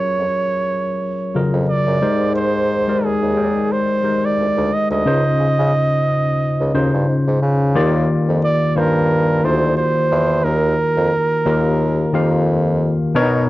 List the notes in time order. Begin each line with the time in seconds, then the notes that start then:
Already playing: F#3 C#4 F4 G#4 A#4 C#5
0.18 F2
1.35 F2 C#3 F#3 F4 G#4 A#4
1.53 F2
1.68 D5
1.87 F#2
2.01 G#2 G#3 D#4 G4 A#4 C5
2.36 C5
2.87 G#3 D#4 G4 A#4 D5
3.03 D#2 G#4
3.22 D#2
3.36 G#3 D#4 A#4 C#5 G5
3.44 D5
3.72 C5
4.03 G#3 D#4 G4 A#4 C5
4.25 D5
4.39 D2
4.57 D2
4.73 D#5
4.90 D2 D#5
5.06 C#2 C#3 C#4 D#4 F4 C5
5.39 C#3
5.59 C#3
6.60 C#2
6.74 D#2 C#3 C#4 D#4 F4 C5
6.94 G2
7.08 G#2
7.27 G#2
7.42 C#3
7.75 D#2 D#3 A#3 F4 G4 D5
8.29 F2
8.45 D5
8.76 G2 D#3 A#3 F4 G4 A#4 C5
9.44 D2 A#3 D#4 F4 F#4 C5 D5
9.51 G4
9.77 C5
10.11 E2
10.44 D#2 A#4
10.97 F2
11.45 D#2 D#3 A#3 F4 G4 A#4
12.13 F2 D#3 A#3 F4 G4 F5
13.15 B2 B3 D4 A#4 C#5
13.22 D#4